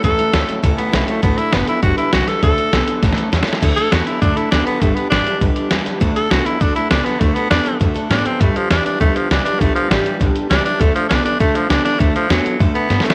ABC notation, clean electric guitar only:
X:1
M:4/4
L:1/8
Q:1/4=200
K:D
V:1 name="Clean electric guitar" clef=bass
[A,,E,]2 [A,,F,]2 [A,,E,]2 [A,,F,]2 | [D,A,]2 [D,B,]2 [G,,D,]2 [G,,E,]2 | [D,A,]2 [D,B,]2 [A,,E,]2 [A,,F,]2 | [D,A,]2 [D,B,]2 [D,A,]2 [D,B,]2 |
[G,,D,]2 [G,,E,]2 [G,,D,]2 [G,,E,]2 | [D,A,]2 [D,B,]2 [D,A,]2 [D,B,]2 | [D,A,]2 [D,B,]2 [D,A,]2 [D,B,]2 | [G,,D,]2 [G,,E,]2 [G,,D,]2 [G,,E,]2 |
[G,,D,]2 [G,,E,]2 [G,,D,]2 [G,,E,]2 | [D,A,]2 [D,B,]2 [D,A,]2 [D,B,]2 | [D,A,]2 [D,B,]2 [D,A,]2 [D,B,]2 |]